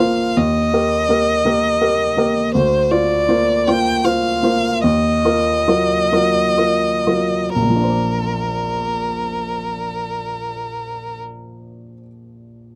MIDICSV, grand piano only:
0, 0, Header, 1, 2, 480
1, 0, Start_track
1, 0, Key_signature, -2, "major"
1, 0, Tempo, 733496
1, 233, Time_signature, 6, 3, 24, 8
1, 2150, Tempo, 774194
1, 3110, Tempo, 833333
1, 3590, Tempo, 906344
1, 4070, Tempo, 972447
1, 7120, End_track
2, 0, Start_track
2, 0, Title_t, "Grand piano"
2, 0, Program_c, 0, 0
2, 0, Control_c, 0, 64, 127
2, 0, Note_on_c, 0, 34, 41
2, 0, Note_on_c, 0, 58, 34
2, 0, Note_on_c, 0, 65, 34
2, 0, Note_on_c, 0, 72, 33
2, 205, Note_off_c, 0, 58, 0
2, 208, Note_off_c, 0, 65, 0
2, 209, Note_off_c, 0, 72, 0
2, 241, Note_on_c, 0, 39, 44
2, 246, Control_c, 0, 64, 0
2, 251, Note_off_c, 0, 34, 0
2, 369, Control_c, 0, 64, 127
2, 470, Note_off_c, 0, 39, 0
2, 481, Note_on_c, 0, 67, 34
2, 482, Note_on_c, 0, 70, 33
2, 690, Note_off_c, 0, 67, 0
2, 691, Note_off_c, 0, 70, 0
2, 713, Note_on_c, 0, 58, 30
2, 719, Note_on_c, 0, 67, 31
2, 720, Note_on_c, 0, 70, 34
2, 923, Note_off_c, 0, 58, 0
2, 926, Note_off_c, 0, 67, 0
2, 927, Note_off_c, 0, 70, 0
2, 949, Note_on_c, 0, 58, 33
2, 953, Note_on_c, 0, 67, 35
2, 955, Note_on_c, 0, 70, 34
2, 1159, Note_off_c, 0, 58, 0
2, 1161, Note_off_c, 0, 67, 0
2, 1162, Note_off_c, 0, 70, 0
2, 1188, Note_on_c, 0, 67, 33
2, 1188, Note_on_c, 0, 70, 36
2, 1399, Note_off_c, 0, 67, 0
2, 1400, Note_off_c, 0, 70, 0
2, 1421, Note_on_c, 0, 58, 37
2, 1425, Note_on_c, 0, 67, 34
2, 1428, Note_on_c, 0, 70, 38
2, 1637, Note_off_c, 0, 58, 0
2, 1639, Note_off_c, 0, 67, 0
2, 1641, Note_off_c, 0, 70, 0
2, 1666, Note_on_c, 0, 38, 45
2, 1672, Control_c, 0, 64, 0
2, 1798, Control_c, 0, 64, 127
2, 1899, Note_off_c, 0, 38, 0
2, 1907, Note_on_c, 0, 65, 38
2, 1907, Note_on_c, 0, 72, 37
2, 2127, Note_off_c, 0, 65, 0
2, 2128, Note_off_c, 0, 72, 0
2, 2151, Note_on_c, 0, 58, 36
2, 2152, Note_on_c, 0, 65, 35
2, 2157, Note_on_c, 0, 72, 36
2, 2364, Note_off_c, 0, 58, 0
2, 2364, Note_off_c, 0, 65, 0
2, 2367, Note_off_c, 0, 72, 0
2, 2395, Note_on_c, 0, 58, 34
2, 2396, Note_on_c, 0, 65, 39
2, 2398, Note_on_c, 0, 72, 36
2, 2605, Note_off_c, 0, 58, 0
2, 2605, Note_off_c, 0, 65, 0
2, 2607, Note_off_c, 0, 72, 0
2, 2621, Note_on_c, 0, 65, 36
2, 2627, Note_on_c, 0, 72, 38
2, 2838, Note_off_c, 0, 65, 0
2, 2842, Note_off_c, 0, 72, 0
2, 2858, Note_on_c, 0, 58, 36
2, 2864, Note_on_c, 0, 65, 33
2, 2866, Note_on_c, 0, 72, 38
2, 3083, Note_off_c, 0, 58, 0
2, 3085, Note_off_c, 0, 65, 0
2, 3087, Note_off_c, 0, 72, 0
2, 3112, Note_on_c, 0, 39, 44
2, 3123, Control_c, 0, 64, 0
2, 3242, Control_c, 0, 64, 127
2, 3340, Note_off_c, 0, 39, 0
2, 3350, Note_on_c, 0, 65, 34
2, 3354, Note_on_c, 0, 70, 38
2, 3569, Note_off_c, 0, 65, 0
2, 3571, Note_off_c, 0, 70, 0
2, 3596, Note_on_c, 0, 54, 33
2, 3597, Note_on_c, 0, 65, 33
2, 3600, Note_on_c, 0, 70, 33
2, 3806, Note_off_c, 0, 54, 0
2, 3806, Note_off_c, 0, 65, 0
2, 3808, Note_off_c, 0, 70, 0
2, 3832, Note_on_c, 0, 54, 30
2, 3834, Note_on_c, 0, 65, 28
2, 3836, Note_on_c, 0, 70, 31
2, 4053, Note_off_c, 0, 54, 0
2, 4054, Note_off_c, 0, 65, 0
2, 4055, Note_off_c, 0, 70, 0
2, 4071, Note_on_c, 0, 65, 28
2, 4076, Note_on_c, 0, 70, 30
2, 4293, Note_off_c, 0, 65, 0
2, 4296, Note_off_c, 0, 70, 0
2, 4314, Note_on_c, 0, 54, 25
2, 4314, Note_on_c, 0, 65, 27
2, 4316, Note_on_c, 0, 70, 26
2, 4537, Note_off_c, 0, 54, 0
2, 4537, Note_off_c, 0, 65, 0
2, 4538, Note_off_c, 0, 70, 0
2, 4555, Note_on_c, 0, 34, 30
2, 4568, Control_c, 0, 64, 0
2, 4589, Note_on_c, 0, 46, 25
2, 4623, Note_on_c, 0, 53, 26
2, 4656, Note_on_c, 0, 62, 27
2, 4664, Control_c, 0, 64, 127
2, 4693, Note_on_c, 0, 72, 26
2, 4725, Note_on_c, 0, 74, 26
2, 6705, Note_off_c, 0, 34, 0
2, 6722, Note_off_c, 0, 46, 0
2, 6739, Note_off_c, 0, 53, 0
2, 6755, Note_off_c, 0, 62, 0
2, 6774, Note_off_c, 0, 72, 0
2, 6790, Note_off_c, 0, 74, 0
2, 7120, End_track
0, 0, End_of_file